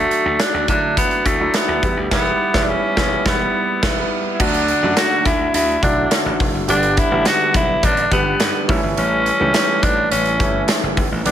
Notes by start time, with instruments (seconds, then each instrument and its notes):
Already playing: grand piano F#3 A3 D4 F#4, tenor saxophone A3
0.11 closed hi-hat
0.25 slap bass D2
0.40 tenor saxophone D4, snare, clap, closed hi-hat
0.54 slap bass D2
0.68 slap bass D3, grand piano F#3 A3 D4 E4, tenor saxophone D4, kick, closed hi-hat
0.97 tenor saxophone B3, kick, closed hi-hat
1.11 closed hi-hat
1.26 slap bass D2, tenor saxophone A3, kick, closed hi-hat
1.39 grand piano F#3 A3 D4 E4
1.54 tenor saxophone B3, snare, clap, closed hi-hat
1.68 slap bass D2
1.82 slap bass E2, grand piano G3 B3 E4 G4, kick, closed hi-hat
1.97 slap bass D2
2.11 slap bass E1, grand piano G3 B3 E4 G4, tenor saxophone B3, kick, snare, crash
2.54 slap bass E1, grand piano G3 B3 E4, kick, snare
2.62 tenor saxophone D4
2.69 tenor saxophone C#4
2.97 slap bass E1, grand piano G3 B3 E4, kick, snare
3.25 slap bass E1, grand piano G3 B3 E4, tenor saxophone B3, kick, snare
3.82 slap bass E1, grand piano G3 B3 E4, kick, snare, crash
4.34 tenor saxophone E4
4.39 slap bass D2, grand piano D3 F#3 A3 D4 F#4, tenor saxophone D4, kick, crash
4.54 closed hi-hat
4.68 closed hi-hat
4.82 slap bass F#2, grand piano D3 F#3 A3 D4 F#4
4.97 tenor saxophone F#4, snare, clap, closed hi-hat, tambourine
5.25 slap bass D2, tenor saxophone E4, kick, closed hi-hat
5.54 slap bass D2, tenor saxophone E4, closed hi-hat
5.68 closed hi-hat
5.82 slap bass B1, grand piano D3 F#3 A3 D4 E4, tenor saxophone D4, kick, closed hi-hat
6.11 snare, clap, closed hi-hat, tambourine
6.26 slap bass A1
6.40 slap bass E1, kick, open hi-hat
6.54 slap bass F#1
6.68 slap bass G1, grand piano D3 G3 B3 D4 G4, tenor saxophone D4, closed hi-hat
6.83 closed hi-hat
6.97 tenor saxophone E4, kick, closed hi-hat
7.11 slap bass A1, grand piano D3 G3 B3 D4 G4
7.26 tenor saxophone F#4, snare, clap, closed hi-hat, tambourine
7.54 slap bass B1, tenor saxophone E4, kick, closed hi-hat
7.83 slap bass A1, tenor saxophone D4, kick, closed hi-hat
7.97 closed hi-hat
8.11 slap bass G1, grand piano D3 G3 B3 D4 G4, tenor saxophone B3, kick, closed hi-hat
8.40 slap bass G2, snare, clap, closed hi-hat, tambourine
8.68 slap bass A1, grand piano E3 G3 A3 C#4 E4, kick, open hi-hat
8.83 slap bass G1
8.97 slap bass A1, tenor saxophone C#4, closed hi-hat
9.26 closed hi-hat
9.40 slap bass C#2, grand piano E3 G3 A3 C#4 G4
9.54 snare, clap, closed hi-hat, tambourine
9.83 slap bass A1, tenor saxophone D4, kick, closed hi-hat
10.11 slap bass A1, tenor saxophone C#4, closed hi-hat
10.26 closed hi-hat
10.39 slap bass G1, grand piano E3 G3 A3 C#4 E4, kick, closed hi-hat
10.68 snare, clap, closed hi-hat, tambourine
10.83 slap bass F#1
10.97 slap bass G1, kick, open hi-hat
11.12 slap bass A1
11.25 slap bass B1, grand piano D3 G3 B3 D4 G4, tenor saxophone D4, closed hi-hat